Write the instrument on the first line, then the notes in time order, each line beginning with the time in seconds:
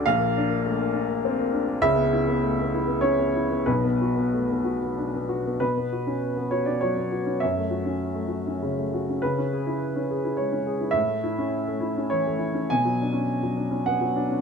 upright piano
Already playing: D2 D3 C#4 D4 F#4 A4 D5
0.06 A#1 A#2 F5
0.19 A#3
0.37 D4
0.49 A#3
0.65 A3
0.80 A#3
0.93 D4
1.09 A#3
1.25 C4
1.39 A#3
1.53 D4
1.68 A#3
1.81 C#2 C#3 E5
1.94 B3
2.13 E4
2.28 B3
2.43 A3
2.61 B3
2.75 E4
2.87 B3
3.01 C#4 C#5
3.19 B3
3.35 E4
3.50 B3
3.66 B1 B2 B4
3.84 B3
4.01 F#4
4.16 B3
4.33 A3
4.50 B3
4.64 F#4
4.82 B3
4.97 D4
5.14 B3
5.29 F#4
5.46 B3
5.60 B2 B4
5.77 B3
5.93 F#4
6.07 C#4
6.37 B3
6.51 F#4 C#5
6.66 C#4 D5
6.81 F#3 C#5
6.96 B3
7.12 F#4
7.26 C#4
7.40 F#2 E5
7.57 A3
7.71 F#4
7.85 C#4
8.15 A3
8.28 F#4
8.47 C#4
8.62 C#3
8.78 A3
8.94 F#4
9.09 C#4
9.22 C#3 B4
9.38 C#4
9.53 G#4
9.67 E4
9.96 C#4
10.11 G#4
10.24 E4
10.37 G#3 C#5
10.52 C#4
10.67 G#4
10.81 E4
10.91 A2 E5
11.07 A3
11.24 E4
11.38 C#4
11.68 A3
11.80 E4
11.97 C#4
12.10 E3 C#5
12.27 A3
12.39 E4
12.54 C#4
12.70 B2 G#5
12.85 F#3
13.02 D4
13.13 C#4
13.43 F#3
13.57 D4
13.71 C#4
13.86 B3 F#5
14.01 F#3
14.16 D4
14.30 C#4